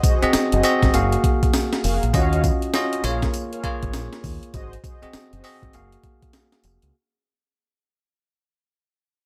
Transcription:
0.03 0.23 F#4 medium
0.03 0.23 G#4 medium
0.03 0.23 C5 medium
0.03 0.23 D#5 medium
0.03 kick medium
0.03 closed hi-hat medium
0.03 tambourine medium
0.22 0.61 C4 loud
0.22 0.61 F#4 medium
0.22 0.62 G#4 medium
0.22 0.62 D#5 loud
0.22 muted fingered electric bass stroke medium
0.22 closed hi-hat soft
0.33 muted fingered electric bass stroke soft
0.33 snare loud
0.33 closed hi-hat medium
0.33 tambourine loud
0.52 0.61 F#1 loud
0.52 0.65 F#4 medium
0.52 0.65 G#4 medium
0.52 0.65 C5 medium
0.52 0.65 D#5 medium
0.52 closed hi-hat soft
0.63 0.94 C4 loud
0.63 0.93 F#4 medium
0.63 0.93 G#4 loud
0.63 0.94 D#5 loud
0.63 closed hi-hat medium
0.63 tambourine medium
0.83 0.91 G#1 medium
0.83 kick medium
0.83 snare medium
0.83 closed hi-hat soft
0.93 1.16 F#1 loud
0.93 2.07 A#3 medium
0.93 2.07 F#4 medium
0.93 2.07 G#4 medium
0.93 2.08 F5 loud
0.93 closed hi-hat medium
0.93 tambourine medium
1.12 closed hi-hat medium
1.24 kick medium
1.24 closed hi-hat medium
1.43 kick medium
1.43 closed hi-hat medium
1.53 snare loud
1.53 closed hi-hat medium
1.53 tambourine loud
1.73 snare medium
1.73 closed hi-hat soft
1.84 1.98 F1 medium
1.84 2.03 F#4 medium
1.84 2.03 G#4 medium
1.84 2.04 A#4 medium
1.84 2.04 F5 medium
1.84 open hi-hat medium
1.84 tambourine medium
2.03 2.11 A#1 loud
2.03 closed hi-hat medium
2.13 2.49 D#2 loud
2.13 2.70 C#4 loud
2.13 2.70 F4 medium
2.13 2.42 F#4 loud
2.13 2.71 F#4 medium
2.13 2.42 C#5 medium
2.13 2.42 D#5 medium
2.13 2.71 D#5 loud
2.13 2.42 F5 loud
2.13 kick loud
2.13 closed hi-hat medium
2.13 tambourine medium
2.33 closed hi-hat medium
2.44 kick medium
2.44 closed hi-hat medium
2.44 tambourine medium
2.62 closed hi-hat soft
2.74 3.02 C#4 loud
2.74 3.02 F4 medium
2.74 3.03 F#4 medium
2.74 3.03 D#5 loud
2.74 snare loud
2.74 closed hi-hat medium
2.74 tambourine loud
2.93 closed hi-hat soft
3.04 3.26 A#1 loud
3.04 3.60 A#3 loud
3.04 3.61 F4 medium
3.04 3.23 G#4 medium
3.04 3.61 G#4 medium
3.04 3.24 A#4 medium
3.04 3.24 C#5 medium
3.04 3.61 C#5 loud
3.04 3.24 F5 medium
3.04 closed hi-hat medium
3.04 tambourine medium
3.22 kick medium
3.22 snare medium
3.22 closed hi-hat soft
3.34 closed hi-hat medium
3.34 tambourine medium
3.53 3.65 G#4 medium
3.53 3.65 A#4 medium
3.53 3.65 C#5 medium
3.53 3.65 F5 medium
3.53 closed hi-hat medium
3.63 4.54 A#3 loud
3.63 4.54 F4 loud
3.63 4.54 G#4 medium
3.63 4.54 C#5 loud
3.63 muted fingered electric bass stroke soft
3.63 kick medium
3.63 closed hi-hat medium
3.83 3.91 G#1 medium
3.83 kick medium
3.83 closed hi-hat medium
3.93 4.08 A#1 loud
3.93 snare loud
3.93 closed hi-hat medium
3.93 tambourine loud
4.13 snare medium
4.13 closed hi-hat soft
4.24 4.38 D#2 loud
4.24 kick medium
4.24 open hi-hat medium
4.24 tambourine medium
4.43 closed hi-hat soft
4.54 4.76 G#1 loud
4.54 4.73 F#4 loud
4.54 4.73 G#4 medium
4.54 4.74 C5 medium
4.54 4.74 D#5 loud
4.54 kick loud
4.54 closed hi-hat medium
4.54 tambourine medium
4.73 closed hi-hat medium
4.84 5.03 F#4 medium
4.84 5.03 G#4 medium
4.84 5.04 C5 medium
4.84 5.04 D#5 medium
4.84 kick medium
4.84 closed hi-hat medium
4.84 tambourine medium
5.02 5.41 C4 loud
5.02 5.41 F#4 medium
5.02 5.41 G#4 medium
5.02 5.42 D#5 loud
5.02 muted fingered electric bass stroke soft
5.02 closed hi-hat soft
5.13 muted fingered electric bass stroke medium
5.13 snare loud
5.13 closed hi-hat medium
5.13 tambourine loud
5.33 5.41 F#1 medium
5.33 5.45 F#4 medium
5.33 5.45 G#4 medium
5.33 5.45 C5 medium
5.33 5.45 D#5 medium
5.33 closed hi-hat soft
5.44 5.74 C4 loud
5.44 5.73 F#4 medium
5.44 5.73 G#4 loud
5.44 5.74 D#5 loud
5.44 open hi-hat medium
5.44 tambourine medium
5.63 5.71 G#1 medium
5.63 kick medium
5.63 closed hi-hat soft
5.73 5.96 F#1 loud
5.73 6.87 A#3 medium
5.73 6.87 F#4 medium
5.73 6.87 G#4 medium
5.73 6.88 F5 loud
5.73 closed hi-hat medium
5.73 tambourine medium
5.92 closed hi-hat soft
6.04 kick medium
6.04 closed hi-hat medium
6.22 kick medium
6.22 closed hi-hat medium
6.33 snare loud
6.33 closed hi-hat medium
6.33 tambourine medium
6.52 snare medium
6.52 closed hi-hat medium
6.64 6.78 F1 loud
6.64 closed hi-hat medium
6.64 tambourine medium
6.82 6.91 C#2 medium
6.82 closed hi-hat medium

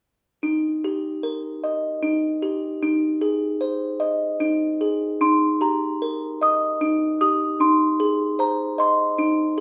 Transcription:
0.43 2.02 D#4 medium
0.84 2.41 G4 medium
1.23 2.82 A#4 medium
1.64 2.82 D#5 medium
2.03 2.81 D#4 medium
2.42 2.82 G4 medium
2.83 4.39 D#4 medium
3.21 4.80 G#4 medium
3.61 5.21 C5 medium
4.00 5.20 D#5 medium
4.40 5.20 D#4 medium
4.81 5.21 G#4 medium
5.21 6.80 D#4 medium
5.21 5.40 C6 medium
5.61 7.20 G4 medium
5.61 6.44 A#5 medium
6.02 7.60 A#4 medium
6.41 7.60 D#5 medium
6.41 7.20 D#6 medium
6.81 7.59 D#4 medium
7.21 7.60 G4 medium
7.21 7.62 D#6 medium
7.60 9.17 D#4 medium
7.60 8.42 C6 medium
8.00 9.57 G#4 medium
8.39 9.60 C5 medium
8.39 8.80 A#5 medium
8.78 9.60 D#5 medium
8.78 9.60 C6 medium
9.18 9.60 D#4 medium

